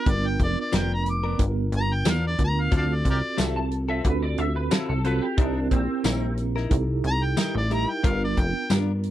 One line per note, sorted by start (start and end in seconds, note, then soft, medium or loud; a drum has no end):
0.00 0.11 A#4 medium
0.06 0.38 G1 loud
0.06 1.32 B3 medium
0.06 1.33 D4 medium
0.06 1.33 F4 medium
0.06 1.33 A#4 medium
0.06 0.29 D5 medium
0.06 kick loud
0.06 closed hi-hat medium
0.27 0.40 G5 medium
0.39 0.56 F1 medium
0.39 0.58 D5 medium
0.39 kick medium
0.39 closed hi-hat medium
0.60 0.77 D5 medium
0.72 1.36 F1 medium
0.72 0.93 F3 medium
0.72 0.93 B3 medium
0.72 0.94 D4 medium
0.72 0.94 A#4 medium
0.72 0.91 G5 medium
0.72 snare medium
0.72 closed hi-hat medium
0.72 tambourine loud
0.94 1.07 A#5 medium
1.06 1.40 D6 medium
1.06 closed hi-hat medium
1.24 1.44 B3 soft
1.24 1.43 D4 soft
1.24 1.43 A#4 medium
1.38 1.71 G1 medium
1.38 2.33 B3 medium
1.38 2.34 D4 medium
1.38 2.34 F4 medium
1.38 2.34 A#4 medium
1.38 kick medium
1.38 closed hi-hat medium
1.72 2.04 G1 medium
1.72 closed hi-hat medium
1.77 1.95 A#5 loud
1.94 2.12 G5 medium
2.05 2.36 E2 medium
2.05 2.26 F3 medium
2.05 2.27 B3 medium
2.05 2.27 D4 medium
2.05 2.27 A#4 medium
2.05 snare loud
2.05 closed hi-hat medium
2.05 tambourine loud
2.10 2.24 F5 medium
2.27 2.40 D5 medium
2.38 2.69 D2 medium
2.38 2.70 B3 medium
2.38 2.70 D4 medium
2.38 2.71 F4 medium
2.38 2.71 A#4 medium
2.38 kick medium
2.38 closed hi-hat medium
2.44 2.63 A#5 medium
2.61 2.74 F5 medium
2.71 3.03 D2 loud
2.71 2.93 F#3 medium
2.71 3.98 C4 medium
2.71 2.93 C4 medium
2.71 2.93 F4 medium
2.71 3.99 F4 medium
2.71 3.99 F#4 medium
2.71 2.93 A4 medium
2.71 3.99 A4 medium
2.71 kick loud
2.71 closed hi-hat medium
2.77 2.84 C5 medium
2.77 2.86 D5 medium
2.77 2.96 F5 medium
2.95 3.07 D5 medium
3.05 3.22 C2 loud
3.05 kick medium
3.05 closed hi-hat medium
3.10 3.18 G4 medium
3.10 3.19 A#4 medium
3.10 3.40 D5 medium
3.38 4.01 C2 medium
3.38 3.59 F#3 medium
3.38 3.59 C4 medium
3.38 3.59 F4 medium
3.38 3.60 A4 medium
3.38 3.55 E5 medium
3.38 snare medium
3.38 closed hi-hat medium
3.38 tambourine loud
3.56 3.71 A5 medium
3.71 closed hi-hat medium
3.89 4.09 C4 soft
3.89 4.09 F4 soft
3.89 4.08 A4 medium
3.89 4.05 E5 medium
4.04 4.36 D2 medium
4.04 5.00 C4 medium
4.04 5.00 F4 medium
4.04 5.00 F#4 medium
4.04 5.00 A4 medium
4.04 4.23 B4 medium
4.04 kick medium
4.04 closed hi-hat medium
4.23 4.39 D5 medium
4.38 4.70 D2 medium
4.38 4.56 E5 medium
4.38 closed hi-hat medium
4.56 4.71 B4 medium
4.71 4.92 F#3 medium
4.71 4.92 C4 medium
4.71 4.88 E4 medium
4.71 4.93 F4 medium
4.71 4.93 A4 loud
4.71 snare loud
4.71 closed hi-hat medium
4.71 tambourine loud
4.89 5.21 C2 medium
4.89 5.05 A4 medium
5.04 5.26 F#3 medium
5.04 5.36 C4 medium
5.04 5.26 C4 medium
5.04 5.36 F4 medium
5.04 5.26 F4 medium
5.04 5.37 F#4 medium
5.04 5.37 A4 medium
5.04 5.27 A4 medium
5.04 5.22 B4 medium
5.04 closed hi-hat medium
5.22 5.38 G4 medium
5.37 5.69 C2 loud
5.37 5.59 G3 medium
5.37 6.64 C4 medium
5.37 5.70 D4 medium
5.37 5.59 D#4 medium
5.37 6.64 E4 medium
5.37 5.59 E4 medium
5.37 6.64 G4 medium
5.37 6.65 A#4 medium
5.37 5.59 A#4 medium
5.37 kick loud
5.37 closed hi-hat medium
5.71 5.88 A#1 loud
5.71 6.36 C4 medium
5.71 kick medium
5.71 closed hi-hat medium
6.04 6.67 A#1 medium
6.04 6.25 G3 medium
6.04 6.26 D#4 medium
6.04 6.26 E4 medium
6.04 6.26 A#4 loud
6.04 snare medium
6.04 closed hi-hat medium
6.04 tambourine loud
6.37 closed hi-hat medium
6.56 6.76 D#4 soft
6.56 6.75 E4 soft
6.56 6.75 A#4 soft
6.56 snare soft
6.70 7.02 C2 loud
6.70 7.65 D#4 medium
6.70 7.65 E4 medium
6.70 7.66 G4 medium
6.70 7.66 A4 medium
6.70 kick medium
6.70 closed hi-hat medium
7.04 7.36 C2 medium
7.04 7.26 A#5 loud
7.04 closed hi-hat medium
7.24 7.38 G5 medium
7.37 7.58 G3 medium
7.37 7.58 D#4 medium
7.37 7.59 E4 medium
7.37 7.59 A#4 medium
7.37 7.56 G5 medium
7.37 snare loud
7.37 closed hi-hat medium
7.37 tambourine loud
7.55 7.86 A1 medium
7.55 7.71 D5 medium
7.69 7.91 G3 soft
7.69 8.02 D#4 medium
7.69 7.92 D#4 soft
7.69 8.02 E4 medium
7.69 7.92 E4 medium
7.69 8.02 G4 medium
7.69 8.03 A#4 medium
7.69 7.92 A#4 medium
7.69 closed hi-hat medium
7.74 7.92 A#5 medium
7.90 8.08 G5 medium
8.03 8.35 G1 loud
8.03 9.11 B3 medium
8.03 8.24 B3 medium
8.03 9.11 D4 medium
8.03 8.25 D4 medium
8.03 9.11 F4 medium
8.03 8.25 F4 medium
8.03 9.11 A#4 medium
8.03 8.25 A#4 medium
8.03 8.22 F5 medium
8.03 kick loud
8.03 closed hi-hat medium
8.24 8.41 D5 medium
8.37 8.54 F1 loud
8.37 8.71 G5 loud
8.37 kick medium
8.37 closed hi-hat medium
8.70 9.11 G2 medium
8.70 8.91 B3 medium
8.70 8.91 D4 medium
8.70 8.92 F4 medium
8.70 8.92 A#4 medium
8.70 snare loud
8.70 closed hi-hat medium
8.70 tambourine loud
9.04 closed hi-hat medium